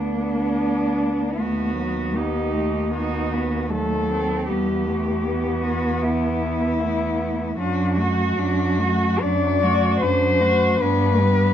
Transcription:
0.00 1.42 D2 soft
0.00 1.40 B3 soft
0.00 1.37 D4 soft
0.00 1.41 D4 soft
1.38 4.52 D#2 soft
1.38 1.76 A3 soft
1.38 2.18 B3 soft
1.38 2.17 F#4 soft
1.77 2.17 F#3 soft
2.15 2.54 B3 soft
2.15 2.92 D#4 soft
2.15 2.94 G4 soft
2.53 2.92 A3 soft
2.93 3.74 B3 soft
2.93 3.35 D#4 soft
2.93 3.72 F#4 soft
3.33 3.71 B3 soft
3.72 4.48 F#3 soft
3.72 4.11 A3 soft
3.72 4.49 A4 medium
4.10 4.51 C4 soft
4.49 7.59 E2 soft
4.49 4.87 G3 soft
4.49 5.26 B3 soft
4.49 5.65 G4 soft
4.88 5.27 A3 soft
5.26 6.79 B3 soft
5.26 6.02 B3 soft
5.63 6.04 F#4 soft
6.02 6.83 B3 soft
6.02 7.59 E4 medium
6.80 7.59 A3 soft
6.80 7.57 B3 soft
7.59 8.29 F#2 soft
7.59 7.99 F#3 soft
7.59 8.02 D4 soft
7.59 7.97 F#4 medium
7.97 8.39 A3 soft
7.97 9.23 F#4 medium
7.97 8.40 F#4 soft
8.37 9.13 F#2 soft
8.37 8.80 F#3 soft
8.37 8.82 D4 soft
8.79 9.22 A3 soft
8.79 9.23 F#4 soft
9.21 9.93 F#2 soft
9.21 9.64 F#3 soft
9.21 9.64 D4 soft
9.21 10.00 D5 medium
9.63 10.04 A3 soft
9.63 10.04 F#4 soft
10.01 10.72 F#2 soft
10.01 10.42 F#3 soft
10.01 10.43 D4 soft
10.01 10.83 C5 medium
10.40 10.81 A3 soft
10.40 10.80 F#4 soft
10.80 11.50 G2 medium
10.80 11.22 B3 soft
10.80 11.23 D4 soft
10.80 11.54 B4 medium
11.21 11.54 G3 soft
11.21 11.54 B3 soft

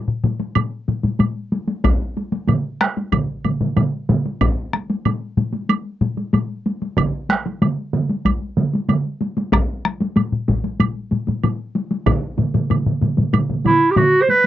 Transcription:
0.08 taiko low-mid medium
0.24 taiko low-mid loud
0.24 taiko high medium
0.40 taiko high medium
0.55 taiko low-mid medium
0.55 taiko high medium
0.55 high woodblock medium
0.88 taiko low-mid medium
0.88 taiko high medium
1.03 taiko low-mid medium
1.03 taiko high soft
1.20 taiko low-mid medium
1.20 taiko high medium
1.20 high woodblock soft
1.52 taiko high medium
1.68 taiko high medium
1.84 taiko loud
1.84 taiko high medium
1.84 high woodblock medium
2.17 taiko high medium
2.32 taiko high medium
2.48 taiko low-mid medium
2.48 taiko mid medium
2.48 taiko high medium
2.48 high woodblock soft
2.81 taiko rim medium
2.81 taiko high soft
2.97 taiko high medium
3.12 taiko medium
3.12 taiko low-mid medium
3.12 taiko mid medium
3.12 taiko high medium
3.12 high woodblock medium
3.45 taiko low-mid medium
3.45 taiko mid medium
3.45 taiko high soft
3.45 high woodblock soft
3.61 taiko low-mid medium
3.61 taiko mid medium
3.61 taiko high soft
3.76 taiko low-mid medium
3.76 taiko mid loud
3.76 taiko high medium
3.76 high woodblock soft
4.09 taiko low-mid medium
4.09 taiko mid loud
4.09 taiko high medium
4.26 taiko high medium
4.41 taiko loud
4.41 taiko low-mid medium
4.41 taiko high medium
4.41 high woodblock medium
4.73 taiko rim medium
4.73 taiko high medium
4.90 taiko high medium
5.05 taiko low-mid medium
5.05 taiko high medium
5.05 high woodblock soft
5.37 taiko low-mid medium
5.37 taiko high medium
5.53 taiko high soft
5.69 taiko high medium
5.69 high woodblock medium
6.01 taiko low-mid medium
6.01 taiko high medium
6.17 taiko high soft
6.33 taiko low-mid medium
6.33 taiko high medium
6.33 high woodblock soft
6.66 taiko high medium
6.82 taiko high soft
6.97 taiko medium
6.97 taiko mid medium
6.97 taiko high medium
6.97 high woodblock medium
7.29 taiko rim medium
7.29 taiko high medium
7.46 taiko high medium
7.62 taiko mid medium
7.62 taiko high medium
7.62 high woodblock soft
7.93 taiko mid medium
7.93 taiko high medium
8.09 taiko high soft
8.25 taiko medium
8.25 taiko high medium
8.25 high woodblock medium
8.57 taiko mid medium
8.57 taiko high soft
8.74 taiko high soft
8.89 taiko mid loud
8.89 taiko high medium
8.89 high woodblock soft
9.21 taiko high medium
9.37 taiko high medium
9.52 taiko rim medium
9.52 taiko loud
9.52 taiko high medium
9.52 high woodblock medium
9.85 taiko rim medium
9.85 taiko high medium
10.01 taiko high medium
10.16 taiko low-mid medium
10.16 taiko high medium
10.16 high woodblock soft
10.32 taiko low-mid medium
10.48 taiko medium
10.48 taiko low-mid medium
10.48 taiko high medium
10.64 taiko high medium
10.80 taiko low-mid medium
10.80 taiko high medium
10.80 high woodblock medium
11.11 taiko low-mid medium
11.11 taiko high medium
11.27 taiko low-mid medium
11.27 taiko high soft
11.44 taiko low-mid medium
11.44 taiko high medium
11.44 high woodblock soft
11.75 taiko high medium
11.91 taiko high medium
12.06 taiko loud
12.06 taiko low-mid medium
12.06 taiko mid medium
12.06 taiko high medium
12.06 high woodblock soft
12.38 taiko low-mid medium
12.38 taiko mid medium
12.38 taiko high medium
12.54 taiko low-mid medium
12.54 taiko mid medium
12.54 taiko high medium
12.70 taiko low-mid medium
12.70 taiko mid medium
12.70 taiko high medium
12.70 high woodblock soft
12.86 taiko low-mid medium
12.86 taiko mid medium
13.01 taiko low-mid medium
13.01 taiko mid medium
13.01 taiko high medium
13.17 taiko low-mid medium
13.17 taiko mid medium
13.17 taiko high soft
13.33 taiko low-mid medium
13.33 taiko mid medium
13.33 taiko high medium
13.33 high woodblock medium
13.49 taiko low-mid medium
13.49 taiko mid medium
13.65 13.92 E4 medium
13.65 taiko low-mid loud
13.65 taiko mid medium
13.65 taiko high soft
13.65 high woodblock soft
13.91 13.98 G4 medium
13.96 14.23 F#4 medium
13.96 taiko low-mid medium
13.96 taiko mid loud
13.96 taiko high medium
13.96 high woodblock soft
14.22 14.31 C5 medium
14.29 14.46 B4 medium
14.29 taiko high medium

